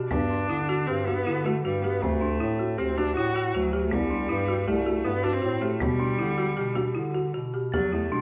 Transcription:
0.09 G2 B3 D4, frame drum
0.30 D4
0.49 D3 E4, frame drum
0.69 F#4
0.86 G2 C4 G4
1.06 B3 F#4, frame drum
1.27 D3 E4
1.44 A3 F#4, frame drum
1.64 G2 G3 F#4, frame drum
1.82 B3 G4
2.01 D2 A3 C4, frame drum
2.21 D4
2.40 A2 E4, frame drum
2.59 F#4, frame drum
2.77 D2 C4 G4
2.97 D4 F#4, frame drum
3.16 A2 E4 F#4
3.36 F#4, frame drum
3.54 D2 F#3 F#4
3.73 G4
3.87 A3
3.91 C2 G3 B3, frame drum
4.10 D4
4.29 G2 E4, frame drum
4.48 F#4, frame drum
4.67 C2 A3 G4
4.86 F#4, frame drum
5.05 G2 B3 E4
5.23 D4 F#4, frame drum
5.33 C4
5.42 A2 F#4, frame drum
5.61 A3 G4
5.80 B2 G3 B3, frame drum
6.00 D4, frame drum
6.19 D3 E4, frame drum
6.38 F#4
6.57 B2 G4
6.75 F#4, frame drum
6.95 D3 E4
7.15 F#4, frame drum
7.34 B2 F#4
7.54 G4
7.72 E2 F#3 G4 A6, frame drum
7.93 A3 E4
8.12 B2 G3 D4, frame drum

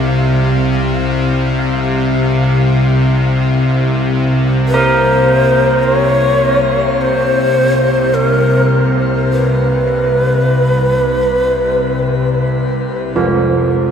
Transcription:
Already playing: C2 C3 F3 F5
4.68 C5
4.74 A#4
5.83 C5
5.94 C#5
7.01 C5
8.14 A#4
9.33 B4
13.16 F3

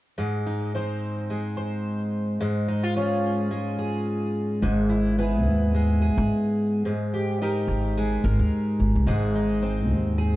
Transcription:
0.18 G#2
0.46 D#4
0.75 C4 D#4 C5
1.30 G#3
1.57 C5
2.41 G#2
2.68 D#4
2.83 F4
2.96 C#4 F4 G#4
3.51 G#3
3.79 G#4
4.62 G#1 G#2
4.90 E4
5.18 B3 E4 G#4
5.46 D#2
5.75 G#3
6.02 G#4
6.18 G#1
6.85 G#2
7.14 G4
7.42 D#4 G4 A#4
7.68 G#1
7.97 G#3
8.24 G#1 A#4
8.39 D#2
8.80 G#1
8.95 C2
9.07 G#1 G#2 G#4
9.35 D#4
9.62 C4
9.91 D#2
10.18 G#4

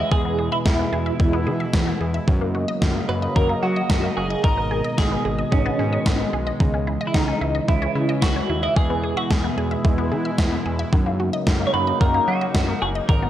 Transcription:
Already playing: E3 G#3
0.00 E4
0.11 E2 B2 E3 E4 G#4, kick
0.25 B3
0.39 G#4
0.52 E4 E5
0.66 E2 E3 E4, kick, snare
0.79 B3
0.93 E2 G#4
1.06 E5
1.20 E2 E3, kick
1.33 B3
1.47 E3 G#4
1.60 E5
1.73 E2 E3, kick, snare
1.87 B3
2.01 E2 G#4
2.14 E5
2.28 F#2 C#3 D#3 F#3 A#3 D#5, kick
2.41 A#3
2.55 F#4
2.68 D#5
2.82 F#2 D#3, kick, snare
2.95 A#3
3.09 F#2 F#4 B4
3.22 D#5
3.36 F#2 D#3 A#4, kick
3.49 A#3
3.63 F#3 F#4
3.76 D#5
3.90 F#2 D#3, kick, snare
4.03 A#3
4.17 F#1 F#4 G#4
4.30 D#5
4.44 G#1 B2 D#3 G#3 A#4, kick
4.57 B3
4.71 G#4
4.84 D#5
4.98 G#1 D#3 G#4, kick, snare
5.11 B3
5.25 G#1 G#4
5.38 D#5
5.52 G#1 D#3 C#4, kick
5.66 B3
5.79 G#2 G#4
5.93 D#5
6.06 G#1 D#3, kick, snare
6.20 B3
6.33 B1 G#4
6.47 D#5
6.60 C#2 C#3 D#3 E3, kick
6.74 C#4
6.87 E4
7.01 D#5
7.07 E4
7.14 C#2 D#3 D#4, kick, snare
7.28 C#4
7.41 C#2 E4
7.55 D#5
7.68 C#2 D#3 E4, kick
7.82 C#4
7.95 C#3 E4
8.09 D#5
8.22 C#2 D#3 F#4, kick, snare
8.36 C#4
8.49 D#2 E4
8.63 E4 D#5
8.76 E2 B2 E3 G#3 E4 G#4, kick
8.90 B3
9.04 G#4
9.17 F#4 E5
9.31 E2 E3 G#4, kick, snare
9.44 B3
9.57 E2 G#4
9.71 E5
9.85 E2 E3, kick
9.98 B3
10.11 E3 G#4
10.25 E5
10.38 E2 E3, kick, snare
10.52 B3
10.66 E2 G#4
10.79 E5
10.93 F#2 C#3 D#3 F#3 A#3 D#4, kick
11.06 A#3
11.20 F#4
11.33 D#5
11.47 F#2 D#3, kick, snare
11.60 A#3
11.67 C#5
11.74 F#2 F#4 B4
11.87 D#5
12.01 F#2 D#3 A#4, kick
12.14 A#3
12.28 F#3 F#4
12.41 D#5
12.55 F#2 D#3, kick, snare
12.68 A#3
12.82 F#1 F#4 G#4
12.95 D#5
13.09 G#1 B2 D#3 G#3 D#4 A#4, kick
13.22 B3

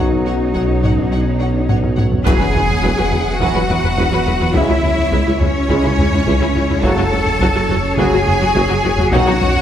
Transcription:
Already playing: B1 F#3 C#4 D#4 F#4 C#5
0.00 B2
0.12 taiko low-mid
0.26 F#3 C#5 F#5
0.54 B1 F#3 C#5 F#5, taiko
0.83 F#3 C#5 F#5, taiko low-mid
0.98 taiko
1.12 B1 F#3 C#5 F#5
1.40 F#3 C#5 F#5
1.69 B1 F#3 C#5 F#5, taiko low-mid
1.84 taiko low-mid
1.97 F#3 C#5 F#5, taiko low-mid
2.12 taiko low
2.26 E1 E2 E3 F#3 B3 F#4 G#4 B4 E5 F#5 G#5, taiko, impact
2.41 E2 F#3 B4
2.54 E1 E2 F#3 B4, taiko low
2.70 taiko low
2.83 E1 E2 F#3 B4, taiko
2.98 E2 F#3 B4
3.12 E1 E2 F#3 B4, taiko low
3.40 E1 E2 E3 F#3 B3 F#4 B4 F#5, taiko
3.55 E2 F#3 B4
3.69 E1 E2 F#3 B4, taiko low
3.83 E2 F#3 B4, taiko low
3.98 E1 E2 F#3 B4, taiko
4.12 E2 F#3 B4
4.26 E1 E2 F#3 B4, taiko low
4.40 E2 F#3 B4, taiko low
4.54 C#2 C#3 G#3 C#4 E4 C#5 E5, taiko
4.69 C#2 G#3 E4
4.83 C#2 G#3 E4, taiko low
4.98 taiko low
5.12 C#2 G#3 E4, taiko
5.26 C#2 G#3 E4
5.40 C#2 G#3 C#4 E4 C#5, taiko low
5.69 C#2 C#3 G#3 C#4 E4, taiko
5.84 C#2 G#3 E4
5.98 C#2 G#3 E4, taiko low
6.11 C#2 G#3 E4, taiko low
6.26 C#2 G#3 E4, taiko
6.40 C#2 G#3 E4
6.55 C#2 G#3 E4, taiko low
6.69 C#2 G#3 E4, taiko low
6.83 F#1 C#3 F#3 C#4 F#4 A4 A5, taiko
6.98 F#1 F#3 F#4
7.11 F#1 F#3 F#4, taiko low
7.26 taiko low
7.40 F#1 F#3 F#4, taiko
7.55 F#1 F#3 F#4
7.69 F#1 F#3 F#4, taiko low
7.97 F#1 C#3 F#3 C#4 F#4 G#4 G#5, taiko
8.12 F#1 F#3 F#4
8.26 F#1 F#3 F#4, taiko low
8.41 F#1 F#3 F#4, taiko low
8.55 F#1 F#3 F#4, taiko
8.69 F#1 F#3 F#4
8.83 F#1 F#3 F#4, taiko low
8.98 F#1 F#3 F#4, taiko low
9.11 B1 D#3 F#3 C#4 D#4 F#4 C#5 F#5, taiko
9.27 B1 F#3 D#4
9.40 B1 F#3 D#4, taiko low
9.55 taiko low

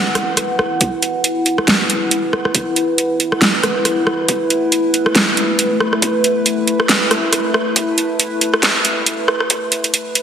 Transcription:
Already playing: E4 B4 F#5
0.15 cross-stick, closed hi-hat
0.37 cross-stick, closed hi-hat
0.59 cross-stick
0.81 kick, closed hi-hat
1.03 closed hi-hat
1.24 closed hi-hat
1.46 closed hi-hat
1.58 cross-stick
1.68 snare, closed hi-hat
1.90 closed hi-hat
2.11 closed hi-hat
2.33 cross-stick
2.45 cross-stick
2.55 kick, closed hi-hat
2.76 closed hi-hat
2.98 closed hi-hat
3.20 closed hi-hat
3.32 cross-stick
3.42 snare, closed hi-hat
3.63 cross-stick, closed hi-hat
3.85 cross-stick, closed hi-hat
4.07 cross-stick
4.28 A3, kick, closed hi-hat
4.50 closed hi-hat
4.72 closed hi-hat
4.94 closed hi-hat
5.06 cross-stick
5.15 snare, closed hi-hat
5.37 closed hi-hat
5.59 closed hi-hat
5.80 cross-stick
5.93 cross-stick
6.02 kick, closed hi-hat
6.24 closed hi-hat
6.46 closed hi-hat
6.68 closed hi-hat
6.80 cross-stick
6.89 snare, closed hi-hat
7.11 cross-stick, closed hi-hat
7.33 cross-stick, closed hi-hat
7.54 cross-stick
7.76 kick, closed hi-hat
7.98 closed hi-hat
8.20 closed hi-hat
8.41 closed hi-hat
8.54 cross-stick
8.63 snare, closed hi-hat
8.85 closed hi-hat
9.06 closed hi-hat
9.28 cross-stick
9.40 cross-stick
9.50 kick, closed hi-hat
9.72 closed hi-hat
9.84 closed hi-hat
9.94 closed hi-hat
10.15 closed hi-hat

